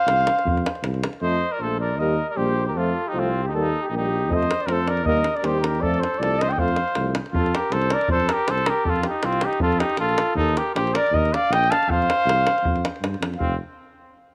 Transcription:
Already playing: trumpet C5, flugelhorn F5
0.06 tuba C2, davul high
0.21 davul high
0.27 davul high
0.39 davul high
0.45 tuba F2, davul low
0.57 davul high
0.66 davul high
0.75 davul high
0.82 tuba C2, davul high
0.94 davul high
1.03 davul high
1.13 davul high
1.21 tuba F2, euphonium F3 A3, trumpet C5, flugelhorn D#5
1.52 trumpet A#4, flugelhorn D5
1.59 tuba A#1, euphonium F3 A3, trumpet A4, flugelhorn C5
1.80 trumpet A#4, flugelhorn D5
1.98 tuba D#2, euphonium G3 A#3, trumpet A#4, flugelhorn D#5
2.29 trumpet A#4, flugelhorn D5
2.36 tuba A#1, euphonium G3 A#3, trumpet G4, flugelhorn C5
2.66 trumpet G4, flugelhorn A#4
2.74 tuba F2, euphonium F3 A3, trumpet F4, flugelhorn A4
3.07 trumpet D#4, flugelhorn G4
3.13 tuba C2, euphonium F3 A3, flugelhorn F4
3.19 trumpet C4
3.44 flugelhorn G4
3.48 trumpet D#4
3.52 tuba D#2, euphonium G3 A#3, flugelhorn A4
3.60 trumpet D#4
3.83 flugelhorn G4
3.88 tuba A#1, trumpet D#4, flugelhorn G4
3.93 euphonium G3 A#3
3.97 trumpet D#4
4.28 tuba F2, euphonium F3 A3, flugelhorn D#5, davul low
4.35 trumpet C5
4.42 davul high
4.51 davul high
4.60 flugelhorn D5, davul high
4.66 tuba F2, euphonium F3 A3, trumpet A#4, flugelhorn C5, davul high
4.72 trumpet A4
4.87 trumpet A#4, flugelhorn D5, davul high
4.97 davul high
5.05 tuba D#2, euphonium G3 A#3, trumpet A#4, flugelhorn D#5, davul low
5.17 davul high
5.24 davul high
5.35 trumpet A#4, flugelhorn D5, davul high
5.43 tuba D#2, euphonium G3 A#3, trumpet G4, flugelhorn C5, davul high
5.61 flugelhorn A#4, davul high
5.65 trumpet G4
5.75 davul high
5.81 tuba F2, euphonium F3 A3, trumpet A4, flugelhorn D5, davul low
5.94 davul high
6.00 trumpet A4, flugelhorn C5, davul high
6.14 davul high
6.19 tuba C2, euphonium F3 A3, trumpet A4, flugelhorn D5, davul high
6.39 trumpet C5, flugelhorn D#5, davul high
6.49 trumpet D#5, flugelhorn G5, davul high
6.58 tuba F2, euphonium F3 A3, trumpet C5, flugelhorn F5, davul low
6.68 davul high
6.76 davul high
6.88 davul high
6.95 tuba C2, euphonium F3 A3, davul high
7.15 davul high
7.26 davul high
7.33 tuba F2, trumpet F4, flugelhorn A4, davul low
7.46 davul high
7.54 trumpet G4, flugelhorn A#4, davul high
7.71 tuba C2, trumpet A4, flugelhorn C5, davul high
7.82 davul high
7.90 trumpet A#4, flugelhorn D5, davul high
8.01 davul high
8.08 tuba F2, trumpet A4, flugelhorn C5, davul low
8.20 davul high
8.29 flugelhorn A#4, davul high
8.33 trumpet G4
8.48 tuba C2, trumpet A4, flugelhorn C5, davul high
8.58 davul high
8.66 trumpet G4, flugelhorn A#4, davul high
8.85 tuba F2, flugelhorn A4, davul low
8.90 trumpet F4
8.96 davul high
9.03 flugelhorn G4, davul high
9.09 trumpet D#4
9.23 tuba C2, trumpet C4, flugelhorn F4, davul high
9.33 davul high
9.41 flugelhorn G4, davul high
9.45 trumpet D#4
9.53 davul high
9.60 tuba F2, trumpet F4, flugelhorn A4, davul low
9.72 davul high
9.80 trumpet D#4, flugelhorn G4, davul high
9.90 davul high
9.97 tuba A#1, trumpet F4, flugelhorn A4, davul high
10.09 davul high
10.18 davul high
10.35 tuba D#2, trumpet D#4, flugelhorn A4, davul low
10.49 davul high
10.57 trumpet G4, flugelhorn A#4, davul high
10.75 tuba A#1, trumpet G4, flugelhorn C5, davul high
10.87 davul high
10.94 trumpet A#4, flugelhorn D5, davul high
11.06 davul high
11.12 tuba D#2, trumpet A#4, flugelhorn D#5, davul low
11.25 davul high
11.34 trumpet D5, flugelhorn F5, davul high
11.50 tuba A#1, trumpet D#5, flugelhorn G5, davul high
11.64 davul high
11.70 trumpet F5, flugelhorn A5, davul high
11.83 davul high
11.88 tuba F2, trumpet C5, flugelhorn F5, davul low
12.02 davul high
12.10 davul high
12.26 tuba C2, davul high
12.47 davul high
12.58 davul high
12.63 tuba F2, davul low
12.76 davul high
12.85 davul high
12.96 davul high
13.01 tuba G2, davul high
13.14 davul high
13.20 tuba F2, davul high
13.34 flugelhorn F5, davul high
13.39 tuba F1, trumpet C4, davul low

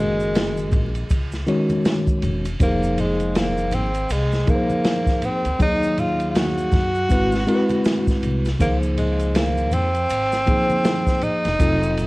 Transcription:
Already playing: upright bass F#1, tine electric piano D#3 G#3 C#4 F#4 A#4, tenor saxophone G#3
0.20 maracas
0.35 snare, hi-hat pedal, ride, maracas
0.57 maracas
0.72 upright bass A#1, kick, ride, high conga, low conga, maracas
0.95 ride, maracas
1.10 upright bass C#2, kick, ride, maracas
1.32 snare, maracas
1.46 tine electric piano D#3 G#3 C#4 F#4 C#5, ride, maracas
1.69 ride, high conga, maracas
1.85 snare, hi-hat pedal, ride, maracas
2.07 kick, maracas
2.22 upright bass E1, ride, low conga, maracas
2.45 ride, maracas
2.59 upright bass F1, tine electric piano F3 A#3 D#4 G4 C5, tenor saxophone A#3, kick, ride, maracas
2.67 tine electric piano G#4
2.83 maracas
2.98 tenor saxophone G#3, ride, low conga, maracas
3.20 ride, maracas
3.35 tenor saxophone A#3, snare, hi-hat pedal, ride, maracas
3.58 maracas
3.72 upright bass G#1, tenor saxophone C4, ride, high conga, low conga, maracas
3.95 ride, maracas
4.10 upright bass C2, tenor saxophone G#3, ride, maracas
4.32 snare, maracas
4.47 tine electric piano F3 A#3 D#4 G#4 A#4, tenor saxophone A#3, kick, ride, maracas
4.55 tine electric piano C5
4.70 high conga, maracas
4.85 snare, hi-hat pedal, ride, maracas
5.07 kick, snare, maracas
5.22 tenor saxophone C4, ride, low conga, maracas
5.45 upright bass D2, ride, maracas
5.59 upright bass D#2, tine electric piano F#3 A#3 D#4 G#4 C#5, tenor saxophone D#4, kick, ride, maracas
5.83 maracas
5.98 tenor saxophone F4, ride, low conga, maracas
6.20 ride, maracas
6.30 tenor saxophone F4
6.35 tenor saxophone F#4, snare, hi-hat pedal, ride, maracas
6.58 maracas
6.71 upright bass F#2, kick, snare, ride, high conga, low conga, maracas
6.95 maracas
7.09 upright bass G#1, tine electric piano G#3 C4 E4 F#4 B4, kick, ride, maracas
7.32 snare, maracas
7.46 tine electric piano G#3 C4 E4 F#4 A#4, ride, maracas
7.55 tine electric piano B4
7.69 ride, high conga, maracas
7.85 snare, hi-hat pedal, ride, maracas
8.07 kick, snare, maracas
8.23 upright bass C2, ride, low conga, maracas
8.45 snare, ride, maracas
8.59 upright bass C#2, tine electric piano D#3 A#3 D#4 G#4 C5, tenor saxophone A#3, kick, ride, maracas
8.65 tine electric piano F3
8.83 maracas
8.98 tenor saxophone G#3, ride, low conga, maracas
9.20 ride, maracas
9.35 tenor saxophone A#3, snare, hi-hat pedal, ride, maracas
9.57 maracas
9.71 upright bass F2, tenor saxophone C4, ride, high conga, low conga, maracas
9.95 ride, maracas
10.10 upright bass G#1, ride, maracas
10.32 snare, maracas
10.46 tine electric piano E3 A#3 D#4 G#4 C5, kick, ride, maracas
10.53 tine electric piano F3
10.70 high conga, maracas
10.85 snare, hi-hat pedal, ride, maracas
11.07 kick, snare, maracas
11.22 tenor saxophone D#4, ride, low conga, maracas
11.45 upright bass E1, snare, ride, maracas
11.59 upright bass F1, tine electric piano F#3 C4 D#4 F4 A4, kick, ride, maracas
11.83 maracas
11.97 ride, low conga, maracas

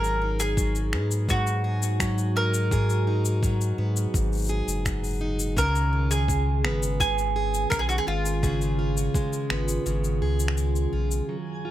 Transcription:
Already playing: sub bass G#1, steel-string acoustic guitar G#2 F#3 G#4, mandolin A#4
0.04 cabasa
0.22 steel-string acoustic guitar D#4
0.40 mandolin G#4, cabasa
0.57 steel-string acoustic guitar F#3, kick, cabasa
0.75 cabasa
0.92 sub bass G#2, steel-string acoustic guitar B3, ambient pad F#4, finger snap
1.11 cabasa
1.29 steel-string acoustic guitar G#2, mandolin F#4, kick, cabasa
1.47 cabasa
1.64 steel-string acoustic guitar G#4
1.82 cabasa
2.00 steel-string acoustic guitar F#3, finger snap, kick, cabasa
2.18 cabasa
2.36 steel-string acoustic guitar D#4, mandolin A#4
2.54 cabasa
2.71 steel-string acoustic guitar G#2 G#4, kick, cabasa
2.90 cabasa
3.07 steel-string acoustic guitar D#4
3.25 cabasa
3.43 steel-string acoustic guitar F#3, kick, cabasa
3.61 cabasa
3.78 sub bass G#2, steel-string acoustic guitar B3
3.96 cabasa
4.14 sub bass G#1, steel-string acoustic guitar G#2, kick, cabasa
4.33 cabasa
4.35 cabasa
4.37 cabasa
4.39 cabasa
4.42 cabasa
4.44 cabasa
4.46 cabasa
4.48 steel-string acoustic guitar G#4, cabasa
4.67 sub bass F#1, cabasa
4.85 steel-string acoustic guitar F#3, finger snap, kick, cabasa
5.04 cabasa
5.06 cabasa
5.09 cabasa
5.10 cabasa
5.15 cabasa
5.17 steel-string acoustic guitar D#4, cabasa
5.39 cabasa
5.57 sub bass C#2, steel-string acoustic guitar C#3 G#4, ambient pad D#3, mandolin A#4, kick, cabasa
5.76 cabasa
5.93 steel-string acoustic guitar F4
6.11 mandolin G#4, cabasa
6.28 steel-string acoustic guitar G#3, kick, cabasa
6.64 sub bass G#1, steel-string acoustic guitar B3, finger snap
6.83 cabasa
7.00 steel-string acoustic guitar C#3, mandolin G#4, kick, cabasa
7.18 cabasa
7.30 ambient pad F4
7.36 steel-string acoustic guitar G#4
7.54 cabasa
7.70 sub bass B1, steel-string acoustic guitar G#3, mandolin A#4, finger snap, kick, cabasa
7.79 mandolin G#4
7.89 mandolin F#4, cabasa
7.98 mandolin G#4
8.07 sub bass G#1, steel-string acoustic guitar F4, mandolin F4
8.26 cabasa
8.43 steel-string acoustic guitar C#3 G#4, kick, cabasa
8.62 cabasa
8.79 steel-string acoustic guitar F4
8.97 cabasa
9.14 steel-string acoustic guitar G#3, kick, cabasa
9.33 cabasa
9.50 sub bass G#1, steel-string acoustic guitar B3, finger snap
9.68 cabasa
9.86 sub bass G#1, steel-string acoustic guitar C#3, cabasa
10.04 cabasa
10.21 sub bass C#2, steel-string acoustic guitar G#4
10.40 cabasa
10.48 finger snap
10.57 steel-string acoustic guitar G#3, cabasa
10.76 cabasa
10.93 sub bass B1, steel-string acoustic guitar F4
11.11 cabasa
11.29 ambient pad F#2, steel-string acoustic guitar F#3, synth texture G#4 G#5
11.65 ambient pad G#3, steel-string acoustic guitar F4

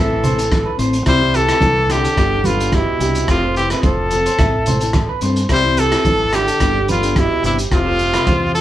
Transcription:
Already playing: fingered electric bass A1, steel-string acoustic guitar C4 E4 A4, trumpet A4, clean electric guitar E5
0.00 tenor saxophone E3
0.23 steel-string acoustic guitar C4 E4 A4, clean electric guitar C5, closed hi-hat, low conga
0.38 steel-string acoustic guitar E4 A4, clean electric guitar A4, closed hi-hat
0.51 kick, cross-stick, closed hi-hat, high conga
0.66 clean electric guitar B4
0.78 fingered electric bass A1, steel-string acoustic guitar C4 E4 A4, clean electric guitar C5, closed hi-hat
0.93 closed hi-hat
1.06 fingered electric bass C2, steel-string acoustic guitar G3 C4 E4 G4, tenor saxophone G3, clean electric guitar E4, trumpet C5, kick, cross-stick, closed hi-hat, muted conga
1.21 steel-string acoustic guitar C4 E4 G4
1.34 tenor saxophone E3, clean electric guitar G4, trumpet A4, closed hi-hat
1.49 steel-string acoustic guitar C4 E4 G4, cross-stick, closed hi-hat
1.61 fingered electric bass C2, clean electric guitar A4, kick, closed hi-hat, high conga
1.88 tenor saxophone D3, steel-string acoustic guitar G3 C4 E4 G4, clean electric guitar G4, trumpet G4, cross-stick, closed hi-hat, muted conga
2.04 clean electric guitar A4, closed hi-hat
2.16 fingered electric bass G1, steel-string acoustic guitar G3 B3 D4 G4, clean electric guitar G4, kick, cross-stick, closed hi-hat, muted conga
2.44 tenor saxophone D3, steel-string acoustic guitar G3 B3 D4 G4, trumpet F4, clean electric guitar B4, closed hi-hat, muted conga, high conga
2.59 steel-string acoustic guitar B3 D4 G4, closed hi-hat
2.72 tenor saxophone B2, trumpet E4, clean electric guitar G4, kick, cross-stick, closed hi-hat, high conga
3.00 fingered electric bass C2, steel-string acoustic guitar G3 B3 D4 G4, clean electric guitar G4, closed hi-hat
3.15 closed hi-hat
3.28 fingered electric bass F1, tenor saxophone C3, steel-string acoustic guitar F3 C4 F4 A4, trumpet F4, kick, cross-stick, closed hi-hat, muted conga
3.42 steel-string acoustic guitar C4 F4 A4, clean electric guitar C5
3.56 tenor saxophone E3, trumpet G4, closed hi-hat
3.70 steel-string acoustic guitar C4 F4 A4, clean electric guitar B4, cross-stick, closed hi-hat
3.83 fingered electric bass F1, tenor saxophone F3, trumpet A4, clean electric guitar C5, kick, closed hi-hat, high conga
4.11 steel-string acoustic guitar F3 C4 F4 A4, clean electric guitar A4, closed hi-hat, muted conga
4.26 clean electric guitar C5, closed hi-hat
4.39 fingered electric bass A1, steel-string acoustic guitar C4 E4 A4, clean electric guitar E5, kick, cross-stick, closed hi-hat, muted conga, high conga, low conga
4.66 steel-string acoustic guitar C4 E4 A4, clean electric guitar C5, closed hi-hat, muted conga, low conga
4.80 steel-string acoustic guitar E4 A4, clean electric guitar A4, closed hi-hat
4.93 kick, cross-stick, closed hi-hat, high conga
5.09 clean electric guitar B4
5.21 fingered electric bass G2, steel-string acoustic guitar C4 E4 A4, clean electric guitar C5, closed hi-hat
5.36 closed hi-hat
5.49 fingered electric bass C2, steel-string acoustic guitar G3 C4 E4 G4, clean electric guitar E4, trumpet C5, kick, cross-stick, closed hi-hat, muted conga
5.54 tenor saxophone G3
5.65 steel-string acoustic guitar E4
5.77 tenor saxophone E3, clean electric guitar G4, trumpet A4, closed hi-hat
5.91 steel-string acoustic guitar C4 E4 G4, cross-stick, closed hi-hat
6.05 fingered electric bass G#1, clean electric guitar A4, kick, closed hi-hat, high conga
6.33 tenor saxophone D3, steel-string acoustic guitar E4 G4, clean electric guitar G4, trumpet G4, muted steel-string acoustic guitar stroke, cross-stick, closed hi-hat, muted conga
6.47 clean electric guitar A4, closed hi-hat
6.60 fingered electric bass G1, steel-string acoustic guitar G3 B3 D4 G4, clean electric guitar G4, kick, cross-stick, closed hi-hat, muted conga
6.88 tenor saxophone D3, steel-string acoustic guitar G3 B3 D4 G4, trumpet F4, clean electric guitar B4, closed hi-hat, muted conga, high conga
7.02 steel-string acoustic guitar B3 D4 G4, closed hi-hat
7.16 tenor saxophone B2, trumpet E4, clean electric guitar G4, kick, cross-stick, closed hi-hat, high conga
7.43 fingered electric bass G1, tenor saxophone C3, steel-string acoustic guitar G3 B3 D4 G4, trumpet E4, clean electric guitar G4, closed hi-hat
7.59 closed hi-hat
7.71 fingered electric bass F1, tenor saxophone C3, steel-string acoustic guitar C4 F4 A4, trumpet F4, kick, cross-stick, closed hi-hat, muted conga
7.86 steel-string acoustic guitar F4 A4, clean electric guitar C5
7.99 closed hi-hat
8.13 steel-string acoustic guitar F4 A4, clean electric guitar B4, cross-stick, closed hi-hat
8.27 fingered electric bass E2, clean electric guitar C5, kick, closed hi-hat, high conga
8.54 tenor saxophone F3, steel-string acoustic guitar C4 F4 A4, trumpet A4, clean electric guitar A4, closed hi-hat, muted conga

